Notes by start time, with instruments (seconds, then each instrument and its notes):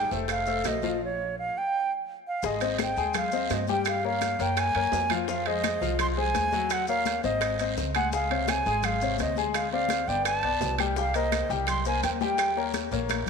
0.11 upright bass F1, grand piano A3 A4 C5, high bongo, high conga, short guiro, maracas
0.28 flute F5, high bongo, high conga, high timbale, long guiro, claves, maracas
0.46 grand piano A3 A4 C5, high conga, maracas
0.64 upright bass A#1, flute D#5, high bongo, low bongo, high conga, high timbale, low timbale, short guiro, maracas
0.82 grand piano F3 F4 F5, high bongo, high conga, short guiro, maracas
1.05 flute C#5
1.39 flute F5
1.58 flute G5
2.28 flute F5
2.42 upright bass G#1, grand piano G#3 G#4 G#5, flute D#5, high bongo, high conga, long guiro, maracas
2.61 grand piano C4 C5 D#5, high bongo, high conga, high timbale, maracas
2.78 flute G5, high bongo, high conga, high timbale, short guiro, claves, maracas
2.96 upright bass D#2, grand piano G#3 G#4 G#5, high bongo, high conga, short guiro, maracas
3.14 flute F5, high bongo, high conga, low conga, high timbale, long guiro, claves, maracas
3.32 grand piano C4 C5 D#5, high conga, maracas
3.50 upright bass G2, flute D#5, high bongo, low bongo, high conga, high timbale, low timbale, short guiro, maracas
3.67 grand piano G3 G4 G5, flute G5, high bongo, high conga, short guiro, maracas
3.85 flute F5, high bongo, high conga, high timbale, long guiro, claves, maracas
4.04 grand piano A#3 A#4 C#5, flute F5, high bongo, high conga
4.21 high bongo, high conga, high timbale, short guiro, maracas
4.39 upright bass F#2, grand piano A#3 A#4 C#5, flute G5, high bongo, short guiro, maracas
4.57 flute G#5, high bongo, high conga, high timbale, long guiro, claves, maracas
4.74 upright bass F#2, grand piano A#3 A#4 C#5, high conga, high timbale
4.92 upright bass F2, high bongo, low bongo, high conga, low timbale, short guiro, maracas
5.10 grand piano F3 F4 F5, high bongo, high conga, high timbale, short guiro, claves, maracas
5.28 grand piano F3 F4 F5, flute F5, high bongo, long guiro, maracas
5.46 grand piano G#3 G#4 C5, flute D#5, high bongo, high conga, high timbale
5.64 high bongo, high conga, high timbale, short guiro, claves, maracas
5.81 upright bass C2, grand piano F3 F4 F5, high bongo, high conga, short guiro, maracas
5.99 flute C6, high bongo, high conga, low conga, high timbale, long guiro, claves, maracas
6.17 grand piano G#3 G#4 C5, flute G#5, high conga
6.35 upright bass D#2, high bongo, low bongo, high conga, high timbale, short guiro, maracas
6.52 grand piano F#3 F#4 F#5, high bongo, high conga, short guiro, maracas
6.70 flute F#5, high bongo, high conga, high timbale, long guiro, claves, maracas
6.87 grand piano A#3 A#4 C#5, flute F5, high bongo, high conga, maracas
7.05 high bongo, high conga, high timbale, short guiro, maracas
7.24 upright bass G#1, grand piano C4 C5 D#5, flute D#5, high bongo, high conga, short guiro, maracas
7.41 high bongo, high conga, high timbale, long guiro, claves, maracas
7.59 grand piano C4 C5 D#5, high conga, high timbale, maracas
7.77 upright bass C#2, high bongo, low bongo, high conga, short guiro, maracas
7.95 grand piano G#3 G#4 G#5, flute F#5, high bongo, high conga, high timbale, short guiro, claves, maracas
8.12 grand piano G#3 G#4 G#5, flute F5, high bongo, long guiro, maracas
8.30 grand piano C3 C5 C#5, high bongo, high conga, high timbale
8.48 flute G#5, high bongo, high conga, high timbale, short guiro, claves, maracas
8.66 upright bass G#1, grand piano G#3 G#4 G#5, high bongo, high conga, short guiro, maracas
8.83 flute F5, high bongo, high conga, low conga, high timbale, long guiro, claves, maracas
9.01 grand piano C3 C5 C#5, maracas
9.18 upright bass D2, flute D#5, high bongo, low bongo, high conga, high timbale, short guiro, maracas
9.35 grand piano G#3 G#4 G#5, high bongo, high conga, short guiro, maracas
9.54 flute F5, high bongo, high conga, high timbale, long guiro, claves, maracas
9.72 grand piano C4 C5 D5, flute F5, high bongo, high conga
9.89 high bongo, high conga, high timbale, short guiro, maracas
10.07 upright bass G1, grand piano B3 B4 D5, flute G5, high bongo, high conga, short guiro, maracas
10.24 flute A5, high bongo, high conga, high timbale, long guiro, claves, maracas
10.43 upright bass B1, grand piano B3 B4 D5, high conga, high timbale
10.60 upright bass C2, high bongo, low bongo, high conga, low timbale, short guiro, maracas
10.78 grand piano G3 G4 G5, high bongo, high conga, high timbale, short guiro, claves, maracas
10.96 grand piano G3 G4 G5, flute F5, high bongo, long guiro, maracas
11.14 grand piano A#3 A#4 C5, flute D#5, high bongo, high conga, high timbale, maracas
11.32 high bongo, high conga, high timbale, short guiro, claves, maracas
11.49 upright bass C2, grand piano G3 G4 G5, high bongo, high conga, short guiro, maracas
11.67 flute C6, high bongo, high conga, low conga, high timbale, long guiro, claves, maracas
11.85 grand piano A#3 A#4 C5, flute G#5, high conga, maracas
12.03 upright bass D#2, flute G5, high bongo, low bongo, high conga, high timbale, short guiro, maracas
12.21 grand piano G3 G4 G5, flute G5, high bongo, high conga, short guiro, maracas
12.38 high bongo, high conga, high timbale, long guiro, claves, maracas
12.57 grand piano A#3 A#4 C#5, high bongo, high conga
12.73 high bongo, high conga, high timbale, short guiro, maracas
12.91 upright bass A#1, grand piano A#3 A#4 C#5, high bongo, high conga, short guiro, maracas
13.09 high bongo, high conga, high timbale, long guiro, claves, maracas
13.27 low conga